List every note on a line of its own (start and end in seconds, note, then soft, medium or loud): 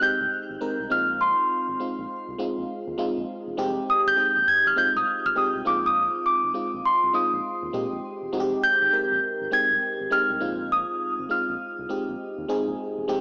0.00 0.60 G#3 medium
0.00 0.61 C4 medium
0.00 0.02 D#4 medium
0.00 0.50 D#4 medium
0.00 0.02 G4 loud
0.00 0.50 G4 medium
0.00 0.93 G6 loud
0.20 0.28 C2 medium
0.50 0.58 G#1 medium
0.60 0.68 C2 soft
0.60 0.89 G#3 medium
0.60 0.89 C4 medium
0.60 0.89 D#4 medium
0.60 0.90 A#4 medium
0.80 0.87 C2 loud
0.90 1.34 A#1 loud
0.90 1.64 G#3 medium
0.90 1.64 C4 medium
0.90 1.64 D#4 medium
0.90 1.65 F4 medium
0.90 1.21 F6 medium
1.21 2.94 C6 medium
1.68 1.76 G#1 medium
1.79 2.28 G#3 medium
1.79 2.28 C4 medium
1.79 2.29 D#4 medium
1.79 2.29 F4 medium
1.98 2.06 A#1 loud
2.28 2.36 C2 medium
2.38 2.87 G#3 medium
2.38 2.88 C4 medium
2.38 2.88 D#4 medium
2.38 2.88 F4 loud
2.57 2.65 A#1 medium
2.87 2.95 D#2 medium
2.98 3.06 A#1 soft
2.98 3.47 G#3 loud
2.98 3.47 C4 medium
2.98 3.47 D#4 medium
2.98 3.47 F4 loud
3.17 3.25 A#1 loud
3.47 3.54 E1 medium
3.57 3.79 F1 loud
3.57 4.06 G#3 loud
3.57 4.07 C4 medium
3.57 4.07 D#4 loud
3.57 4.07 G4 loud
3.90 3.98 D#6 medium
4.06 4.14 G#1 medium
4.06 4.45 G6 loud
4.16 4.65 G#3 medium
4.16 4.66 C4 medium
4.16 4.66 D#4 medium
4.16 4.66 G4 medium
4.36 4.44 A#1 loud
4.48 4.66 G#6 loud
4.66 4.74 G#1 loud
4.66 4.77 F6 medium
4.76 5.25 G#3 medium
4.76 5.25 C4 medium
4.76 5.25 D#4 medium
4.76 5.26 F4 medium
4.76 4.96 G6 loud
4.95 5.03 C2 loud
4.95 5.26 D#6 medium
5.25 5.33 G#1 medium
5.25 5.36 F6 loud
5.35 5.43 C2 medium
5.35 5.64 G#3 medium
5.35 5.64 C4 medium
5.35 5.64 D#4 medium
5.35 5.66 G4 medium
5.35 5.50 D#6 medium
5.55 5.63 C2 medium
5.65 6.09 A#1 loud
5.65 6.39 G#3 medium
5.65 6.39 C4 medium
5.65 6.40 D#4 medium
5.65 6.40 F4 medium
5.65 5.85 D6 medium
5.86 6.27 D#6 medium
6.26 6.86 D6 medium
6.44 6.52 G#1 medium
6.54 7.03 G#3 medium
6.54 7.03 C4 medium
6.54 7.03 D#4 medium
6.54 7.04 F4 medium
6.74 6.81 A#1 loud
6.85 7.12 C6 medium
7.03 7.11 C2 medium
7.13 7.62 G#3 medium
7.13 7.63 C4 medium
7.13 7.63 D#4 medium
7.13 7.63 F4 medium
7.13 7.99 D#6 medium
7.33 7.41 A#1 loud
7.62 7.70 D#2 medium
7.73 7.87 A#2 loud
7.73 8.22 G#3 medium
7.73 8.22 C4 medium
7.73 8.23 D#4 medium
7.73 8.23 G4 medium
7.92 8.00 A#1 loud
8.22 8.30 E1 medium
8.33 8.54 F1 loud
8.33 8.82 G#3 medium
8.33 8.82 C4 loud
8.33 8.82 D#4 loud
8.33 8.41 F#4 medium
8.40 8.85 G4 loud
8.63 9.18 G6 loud
8.81 8.89 G#1 medium
8.92 9.41 G#3 medium
8.92 9.41 C4 medium
8.92 9.41 D#4 medium
8.92 9.42 A#4 medium
9.11 9.19 A#1 loud
9.41 9.49 G#1 medium
9.51 10.00 G#3 medium
9.51 10.00 C4 medium
9.51 10.01 D#4 medium
9.51 10.01 G4 medium
9.51 10.13 G#6 loud
9.71 9.78 C2 medium
10.00 10.08 G#1 medium
10.10 10.19 C2 soft
10.10 10.39 G#3 medium
10.10 10.39 C4 medium
10.10 10.40 D#4 medium
10.10 10.41 G4 medium
10.10 10.73 F6 loud
10.30 10.38 C2 loud
10.40 10.84 A#1 loud
10.40 11.15 G#3 medium
10.40 11.15 C4 medium
10.40 11.15 D#4 medium
10.40 11.15 F4 medium
10.72 11.32 D#6 medium
11.19 11.27 G#1 loud
11.29 11.78 G#3 medium
11.29 11.79 C4 medium
11.29 11.79 D#4 medium
11.29 11.79 F4 medium
11.29 12.45 F6 medium
11.49 11.57 A#1 loud
11.79 11.86 C2 medium
11.89 12.38 G#3 medium
11.89 12.38 C4 medium
11.89 12.38 D#4 medium
11.89 12.39 G4 medium
12.08 12.16 A#1 medium
12.38 12.46 D#2 medium
12.48 12.56 A#1 medium
12.48 12.97 G#3 medium
12.48 12.98 C4 medium
12.48 12.98 D#4 medium
12.48 12.98 G#4 loud
12.67 12.75 A#1 loud
12.97 13.05 E1 medium
13.08 13.21 F1 loud
13.08 13.21 G#3 loud
13.08 13.21 C4 medium
13.08 13.21 D#4 medium
13.08 13.21 G4 loud